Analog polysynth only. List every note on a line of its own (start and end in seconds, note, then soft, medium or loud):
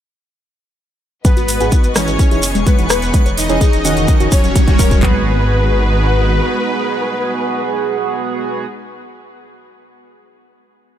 1.25 1.32 G#2 medium
1.25 1.33 B3 medium
1.25 1.32 F#4 medium
1.25 1.33 G#4 medium
1.60 1.72 G#2 medium
1.60 1.72 B3 medium
1.60 1.72 F#4 medium
1.60 1.72 G#4 loud
1.96 2.28 E3 medium
1.96 2.28 D#4 medium
1.96 2.28 E4 medium
1.96 2.28 G#4 loud
2.31 2.39 E3 medium
2.31 2.39 D#4 medium
2.31 2.39 E4 medium
2.31 2.39 G#4 loud
2.79 2.86 E3 medium
2.79 2.86 D#4 medium
2.79 2.86 E4 medium
2.79 2.86 F#4 medium
3.14 3.21 E3 medium
3.14 3.21 C#4 medium
3.14 3.21 E4 medium
3.14 3.21 G#4 medium
3.49 3.61 E3 loud
3.49 3.61 C#4 medium
3.49 3.61 E4 medium
3.49 3.61 G#4 loud
3.85 4.17 D#3 medium
3.85 4.17 C#4 medium
3.85 4.17 D#4 medium
3.85 4.17 F#4 loud
4.20 4.28 D#3 medium
4.20 4.28 C#4 medium
4.20 4.28 D#4 medium
4.20 4.28 F#4 loud
4.68 4.75 D#3 medium
4.68 4.75 C#4 medium
4.68 4.75 D#4 medium
4.68 4.75 F#4 medium
5.03 8.65 B3 medium
5.03 8.65 F#4 medium
5.03 8.65 G#4 loud